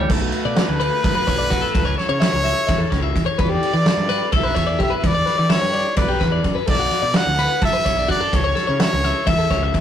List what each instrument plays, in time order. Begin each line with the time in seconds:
Already playing: clean electric guitar G3 A3
0.00 clean electric guitar C#5
0.10 picked electric bass B1, clean electric guitar A4, trumpet B4, kick, crash
0.22 clean electric guitar F#4
0.32 ride
0.45 picked electric bass B2, clean electric guitar D5
0.56 snare, ride
0.69 picked electric bass D2
0.80 clean electric guitar B4, ride
1.04 picked electric bass F#2, clean electric guitar A4, kick, ride
1.15 clean electric guitar B4
1.27 picked electric bass B1, clean electric guitar C#5, kick, ride
1.38 clean electric guitar D5
1.50 picked electric bass B1, clean electric guitar F#4, kick, ride
1.61 clean electric guitar A4
1.75 picked electric bass C#2, kick, ride
1.85 clean electric guitar C#5
1.96 clean electric guitar A4, trumpet C#5, snare, ride
2.09 picked electric bass C#3, clean electric guitar C#5
2.20 clean electric guitar E5, snare, ride
2.32 picked electric bass C#2, clean electric guitar C#5
2.44 clean electric guitar E5, snare, ride
2.67 picked electric bass E2, clean electric guitar E5, kick, snare, ride
2.78 clean electric guitar A4
2.90 picked electric bass C#2, clean electric guitar C#5, kick, snare, ride
3.02 clean electric guitar E5
3.16 picked electric bass E2, kick, ride
3.26 clean electric guitar C#5
3.38 picked electric bass E2, clean electric guitar B4, kick, ride
3.42 trumpet D5
3.49 clean electric guitar G4
3.63 ride
3.73 picked electric bass E3, clean electric guitar D5
3.86 snare, ride
3.97 picked electric bass G2
4.09 clean electric guitar B4, snare, ride
4.32 picked electric bass B1, clean electric guitar A4, kick, ride
4.36 trumpet E5
4.43 clean electric guitar B4
4.55 picked electric bass E2, clean electric guitar C#5, kick, ride
4.67 clean electric guitar D5
4.79 picked electric bass B1, clean electric guitar G4, trumpet E5, kick, ride
4.90 clean electric guitar B4
4.97 trumpet E5
5.03 picked electric bass E2, trumpet D5, kick, ride
5.15 clean electric guitar D5
5.26 clean electric guitar B4, snare, ride
5.38 picked electric bass E3, clean electric guitar D5
5.49 trumpet C#5, clean electric guitar E5, snare, ride
5.61 picked electric bass G2, clean electric guitar C#5
5.73 clean electric guitar D5, ride
5.97 picked electric bass B1, trumpet B4, clean electric guitar D5, kick, ride
6.08 clean electric guitar G4
6.20 picked electric bass E2, clean electric guitar B4, kick, snare, ride
6.32 clean electric guitar D5
6.44 picked electric bass F#2, kick, ride
6.55 clean electric guitar B4
6.67 picked electric bass B1, clean electric guitar A4, trumpet D5, kick, crash
6.79 clean electric guitar F#4
6.91 snare, ride
7.02 picked electric bass B2, clean electric guitar D5
7.14 trumpet F#5, snare, ride
7.26 picked electric bass D2
7.39 clean electric guitar B4, ride
7.61 picked electric bass F#2, clean electric guitar A4, trumpet E5, kick, ride
7.73 clean electric guitar B4
7.85 picked electric bass B1, clean electric guitar C#5, kick, snare, ride
7.97 clean electric guitar D5
8.09 picked electric bass F#2, clean electric guitar F#4, trumpet D5, kick, ride
8.21 clean electric guitar A4
8.33 picked electric bass C#2, trumpet C#5, kick, ride
8.44 clean electric guitar C#5
8.55 clean electric guitar A4, snare, ride
8.67 picked electric bass C#3, clean electric guitar C#5
8.80 trumpet C#5, clean electric guitar E5, snare, ride
8.92 picked electric bass C#2, clean electric guitar C#5
9.04 clean electric guitar E5, snare, ride
9.27 picked electric bass E2, clean electric guitar E5, trumpet E5, kick, ride
9.39 clean electric guitar A4
9.50 picked electric bass C#2, clean electric guitar C#5, kick, snare, ride
9.63 clean electric guitar E5
9.74 picked electric bass E2, kick, ride